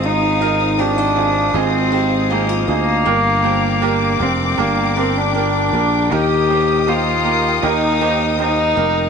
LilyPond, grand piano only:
<<
  \new Staff \with { instrumentName = "Grand piano" } { \time 4/4 \key ees \major \tempo 4 = 79 <c' ees' f' aes'>8 <c' ees' f' bes'>8 <ees c' f' g'>8 <ees c' f' aes'>8 <c' ees' f' aes'>8 <c' ees' f' g'>8 <c' ees' f' aes'>8 <c' ees' f' aes'>8 | <bes d' g' bes'>8 <bes d' g' c''>8 <bes d' g' bes'>8 <bes d' g' bes'>8 <bes d' g' bes'>8 <bes d' g' bes'>8 <bes d' g' bes'>8 <bes d' g' bes'>8 | <bes ees' g' bes'>8 <bes ees' g' c''>8 <bes ees' g' c''>8 <bes ees' g' bes'>8 <bes ees' g' bes'>8 <bes ees' g' c''>8 <bes ees' g' c''>8 <bes ees' g' bes'>8 | }
  \new Staff \with { instrumentName = "Grand piano" } { \clef bass \time 4/4 \key ees \major r1 | r1 | bes,4. r2 r8 | }
>>